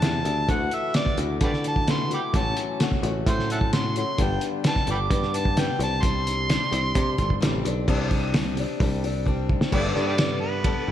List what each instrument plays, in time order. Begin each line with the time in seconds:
Already playing: harmonica A5
0.02 picked electric bass E2, steel-string acoustic guitar G3 C4 D4 G4, snare, closed hi-hat
0.25 picked electric bass D2, steel-string acoustic guitar C4 D4 G4, closed hi-hat
0.48 picked electric bass D2, steel-string acoustic guitar D3 E3 A3 E4 F#4, harmonica F#5, kick, closed hi-hat
0.71 harmonica E5, closed hi-hat
0.94 steel-string acoustic guitar E3 A3 E4 F#4, harmonica D5, snare, closed hi-hat
1.06 kick, snare
1.18 picked electric bass D2, steel-string acoustic guitar A3 E4 F#4, closed hi-hat
1.40 picked electric bass D3, steel-string acoustic guitar E3 A3 E4 F#4, harmonica G4 B4 D5, kick, closed hi-hat
1.53 snare
1.64 harmonica A5, closed hi-hat
1.76 kick
1.87 steel-string acoustic guitar E3 A3 E4 F#4, harmonica C6, snare, closed hi-hat
2.10 steel-string acoustic guitar A3 E4 F#4, harmonica G5 B5 D6, closed hi-hat
2.33 picked electric bass A1, steel-string acoustic guitar A2 E3 F#3 A3 C#4 F#4, kick, closed hi-hat
2.37 harmonica A5
2.57 closed hi-hat
2.80 steel-string acoustic guitar F#3 A3 C#4 F#4, snare, closed hi-hat
2.92 kick, snare
3.02 picked electric bass A1, steel-string acoustic guitar F#3 A3 C#4 F#4, closed hi-hat
3.26 picked electric bass A2, steel-string acoustic guitar F#3 A3 C#4 F#4, harmonica C5, kick, closed hi-hat
3.39 snare
3.50 harmonica E5 F#5 A5, closed hi-hat
3.61 kick
3.72 steel-string acoustic guitar F#3 A3 C#4 F#4, harmonica C6, snare, closed hi-hat
3.96 steel-string acoustic guitar F#3 A3 C#4 F#4, harmonica C6, closed hi-hat
4.18 picked electric bass G1, steel-string acoustic guitar G2 D3 G3 B3 D4 G4, harmonica G5, kick, closed hi-hat
4.41 closed hi-hat
4.64 steel-string acoustic guitar G3 B3 D4 G4, snare, closed hi-hat
4.68 harmonica A5
4.76 kick, snare
4.87 picked electric bass G1, steel-string acoustic guitar G3 B3 D4 G4, harmonica G5 B5 D6, closed hi-hat
5.10 picked electric bass G2, steel-string acoustic guitar G3 B3 D4 G4, kick, closed hi-hat
5.23 snare
5.34 harmonica A5, closed hi-hat
5.45 kick
5.56 steel-string acoustic guitar G3 B3 D4 G4, harmonica G5, snare, closed hi-hat
5.79 picked electric bass C2, steel-string acoustic guitar C4 D4 G4, harmonica A5, closed hi-hat
6.02 steel-string acoustic guitar C3 G3 C4 D4 G4, harmonica C6, kick, closed hi-hat
6.27 closed hi-hat
6.49 steel-string acoustic guitar G3 C4 D4 G4, snare, closed hi-hat
6.71 picked electric bass C2, steel-string acoustic guitar C4 D4 G4, closed hi-hat
6.94 picked electric bass C3, steel-string acoustic guitar G3 C4 D4 G4, kick, closed hi-hat
7.18 picked electric bass G1, kick, closed hi-hat
7.30 kick
7.41 picked electric bass A1, steel-string acoustic guitar G3 C4 D4 G4, snare, closed hi-hat
7.65 picked electric bass B1, steel-string acoustic guitar C4 D4 G4, closed hi-hat
7.88 picked electric bass C2, steel-string acoustic guitar C3 G3 C4 D4 G4, kick, crash
8.11 kick, open hi-hat
8.34 steel-string acoustic guitar G3 C4 D4 G4, snare, open hi-hat
8.57 steel-string acoustic guitar C4 D4 G4, open hi-hat
8.80 picked electric bass C2, steel-string acoustic guitar G3 C4 D4 G4, kick, open hi-hat
9.04 steel-string acoustic guitar C4 D4 G4, open hi-hat
9.25 steel-string acoustic guitar G3 C4 D4 G4, kick
9.49 kick
9.61 snare
9.72 picked electric bass G1, steel-string acoustic guitar G3 B3 D4 A4, harmonica G4 B4 D5, kick, crash
9.95 picked electric bass G2, steel-string acoustic guitar B3 D4 A4, snare
10.07 harmonica G4 B4 D5
10.18 steel-string acoustic guitar G3 B3 D4 A4, snare, ride bell
10.41 harmonica B4
10.64 steel-string acoustic guitar G3 B3 D4 A4, kick, ride bell
10.88 picked electric bass G1